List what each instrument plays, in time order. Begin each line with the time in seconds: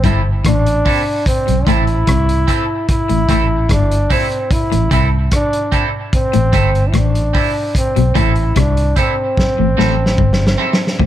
0.04 fingered electric bass G1, clean electric guitar G2 C4 E4 A4, trombone E4, kick, closed hi-hat
0.45 fingered electric bass A1, clean electric guitar A2, trombone D4, kick, cross-stick, closed hi-hat
0.66 closed hi-hat
0.85 clean electric guitar C4 E4 A4, kick, open hi-hat
1.26 trombone C4, kick, closed hi-hat
1.47 fingered electric bass B1, clean electric guitar B2, closed hi-hat
1.67 fingered electric bass A1, clean electric guitar A2 C4 E4 A4, trombone E4, kick, closed hi-hat
1.87 closed hi-hat
2.07 fingered electric bass C2, clean electric guitar C3, kick, cross-stick, closed hi-hat
2.29 closed hi-hat
2.47 clean electric guitar C4 E4 A4, kick, closed hi-hat
2.89 trombone E4, kick, closed hi-hat
3.09 fingered electric bass A1, clean electric guitar A2, closed hi-hat
3.29 fingered electric bass A1, clean electric guitar A2 C4 E4 A4, kick, cross-stick, closed hi-hat
3.69 fingered electric bass G1, clean electric guitar G2, trombone D4, kick, cross-stick, closed hi-hat
3.92 closed hi-hat
4.10 clean electric guitar C4 E4 A4, trombone C4, kick, open hi-hat
4.32 closed hi-hat
4.51 trombone E4, kick, closed hi-hat
4.72 fingered electric bass A1, clean electric guitar A2, closed hi-hat
4.91 fingered electric bass C2, clean electric guitar C3 C4 E4 A4, trombone E4, kick, closed hi-hat
5.31 trombone D4, kick, cross-stick, closed hi-hat
5.53 closed hi-hat
5.72 clean electric guitar C4 E4 A4, kick, closed hi-hat
6.13 trombone C4, kick, closed hi-hat
6.33 fingered electric bass A1, clean electric guitar A2, closed hi-hat
6.53 fingered electric bass G1, clean electric guitar G2 C4 E4 A4, kick, closed hi-hat
6.75 closed hi-hat
6.88 trombone E4
6.94 fingered electric bass A1, clean electric guitar A2, trombone D4, kick, cross-stick, closed hi-hat
7.15 closed hi-hat
7.33 clean electric guitar C4 E4 A4, kick, open hi-hat
7.75 trombone C4, kick, closed hi-hat
7.96 fingered electric bass B1, clean electric guitar B2, closed hi-hat
8.15 fingered electric bass A1, clean electric guitar A2 C4 E4 A4, trombone E4, kick, closed hi-hat
8.36 closed hi-hat
8.56 fingered electric bass C2, clean electric guitar C3, trombone D4, kick, cross-stick, closed hi-hat
8.77 closed hi-hat
8.96 clean electric guitar C4 E4 A4, trombone C4, kick, closed hi-hat
9.37 kick, snare
9.58 fingered electric bass A1, clean electric guitar A2
9.77 fingered electric bass A1, clean electric guitar A2 C4 E4 A4, snare
10.06 snare
10.18 fingered electric bass G1, clean electric guitar G2, kick
10.33 snare
10.47 snare
10.58 clean electric guitar C4 E4 A4
10.73 snare
10.87 snare
10.99 fingered electric bass A1, clean electric guitar A2, kick